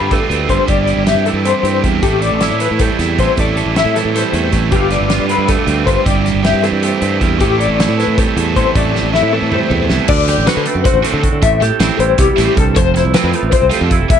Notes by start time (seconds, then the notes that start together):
Already playing: G2 D3 A3 C4 D4 F4 B4
0.01 G2
0.10 G3 A3 D4 F4 A4 B4, kick, closed hi-hat
0.29 D2 G3 C4 D4 F4 B4, closed hi-hat
0.48 G1 G2 G3 D4 F4 B4 C5, kick, closed hi-hat
0.66 G1 G2 G3 C4 E4 G4 D5, kick, closed hi-hat
0.86 C4 E4 G4, closed hi-hat
0.97 G1
1.06 G3 C4 E4 G4 E5, snare, closed hi-hat
1.15 G2
1.25 E3 C4 E4 G4 A4, closed hi-hat
1.33 G2
1.45 G3 A3 C4 E4 G4 C5, closed hi-hat
1.63 G2 G3 C4 E4 G4, closed hi-hat
1.83 E2 G2 G3 C4 E4 G4, kick, closed hi-hat
2.02 A1 A2 A3 C4 E4 G4 A4, kick, closed hi-hat
2.21 C4 E4 A4 D5, closed hi-hat
2.32 A1
2.41 A3 C4 E4 A4, snare, closed hi-hat
2.51 A2
2.60 E3 C4 E4 A4 B4, closed hi-hat
2.71 A2
2.79 G3 A3 C4 E4 A4, kick, closed hi-hat
2.99 E2 A3 C4 E4 A4, snare, closed hi-hat
3.18 A1 E2 A3 C4 E4 A4 C5, kick, closed hi-hat
3.37 A1 A2 A3 C4 E4 A4 D5, kick, closed hi-hat
3.57 C4 E4 A4, closed hi-hat
3.66 A1
3.76 A3 C4 E4 A4 E5, snare, closed hi-hat
3.85 A2
3.95 E3 C4 E4 A4, snare, closed hi-hat
4.05 A2
4.14 G3 A3 C4 E4 A4 C5, snare, closed hi-hat
4.33 E2 A3 C4 E4 A4, closed hi-hat
4.52 A1 E2 A3 C4 E4 A4, kick, snare, closed hi-hat
4.71 G1 G2 D3 G3 A3 C4 D4 F4 G4 B4, kick, closed hi-hat
4.76 F4
4.90 D4 F4 B4 D5, snare, closed hi-hat
5.01 G1
5.08 G3 D4 F4 B4, snare, closed hi-hat
5.20 G2
5.27 D3 C4 D4 F4 B4, closed hi-hat
5.38 G2
5.47 G3 A3 D4 F4 A4 B4, kick, snare, closed hi-hat
5.67 D2 G3 C4 D4 F4 B4, closed hi-hat
5.85 G1 G2 G3 D4 F4 B4 C5, kick, closed hi-hat
6.04 G1 G2 G3 C4 E4 G4 D5, kick, closed hi-hat
6.25 C4 E4 G4, snare, closed hi-hat
6.35 G1
6.43 G3 C4 E4 G4 E5, snare, closed hi-hat
6.53 G2
6.63 E3 C4 E4 G4 A4, snare, closed hi-hat
6.72 G2
6.82 G3 A3 C4 E4 G4 C5, closed hi-hat
7.02 G2 G3 C4 E4 G4, closed hi-hat
7.20 E2 G2 G3 C4 E4 G4, kick, closed hi-hat
7.39 A1 A2 A3 C4 E4 G4 A4, kick, closed hi-hat
7.59 C4 E4 A4 D5, closed hi-hat
7.68 A1
7.79 A3 C4 E4 A4, snare, closed hi-hat
7.88 A2
7.98 E3 C4 E4 A4 B4, snare, closed hi-hat
8.08 A2
8.18 G3 A3 C4 E4 A4, kick, closed hi-hat
8.36 E2 A3 C4 E4 A4, closed hi-hat
8.56 A1 E2 A3 C4 E4 A4 C5, kick, closed hi-hat
8.75 A1 A2 A3 C4 E4 A4 D5, kick, closed hi-hat
8.93 C4 E4 A4, snare
9.03 A1
9.13 A3 C4 E4 A4 E5, snare
9.22 A2
9.31 E3 C4 E4 A4
9.42 A2
9.51 G3 A3 C4 E4 A4 C5, mid tom
9.70 E2 A3 C4 E4 A4, floor tom
9.90 C2 E2 A3 C4 E4 A4, snare
10.08 D2 D3 D5, muted overdriven electric guitar stroke, kick, crash
10.28 G4, muted overdriven electric guitar stroke, snare, closed hi-hat
10.38 A1
10.47 D3 A3 C4 F#4 B4, snare, closed hi-hat
10.57 D3
10.66 A3 C4, muted overdriven electric guitar stroke, closed hi-hat
10.75 F#2
10.85 F#4 C5, muted overdriven electric guitar stroke, kick, snare, closed hi-hat
10.94 A1
11.03 A2 D3 A3 C4 F#4 A4, closed hi-hat
11.14 D3
11.22 F#4, muted overdriven electric guitar stroke, kick, closed hi-hat
11.32 D3
11.42 A1 A2 E5, muted overdriven electric guitar stroke, kick, closed hi-hat
11.61 A2 G4 A4, muted overdriven electric guitar stroke, snare, closed hi-hat
11.80 A1 E3 A3 C4 E4, snare, closed hi-hat
11.99 A1 E3 G3 C5, muted overdriven electric guitar stroke, closed hi-hat
12.18 C2 B2 G4, muted overdriven electric guitar stroke, kick, snare, closed hi-hat
12.37 A1 A2 E3 A3 C4 E4, snare, closed hi-hat
12.57 C2 G2 A4, muted overdriven electric guitar stroke, kick, closed hi-hat
12.75 F1 F2 C5, muted overdriven electric guitar stroke, kick, closed hi-hat
12.94 E4, muted overdriven electric guitar stroke, snare, closed hi-hat
13.05 C2
13.14 F3 A3 C4 F4 B4, snare, closed hi-hat
13.24 F2
13.33 F3 A3, muted overdriven electric guitar stroke, closed hi-hat
13.43 A1
13.52 C4 C5, muted overdriven electric guitar stroke, kick, closed hi-hat
13.62 C2
13.70 C3 F3 G3 A3 C4 F4 A4, closed hi-hat
13.81 F2 A3
13.90 E4, muted overdriven electric guitar stroke, kick, closed hi-hat
14.00 F1
14.09 E1 E2 E5, muted overdriven electric guitar stroke, kick, closed hi-hat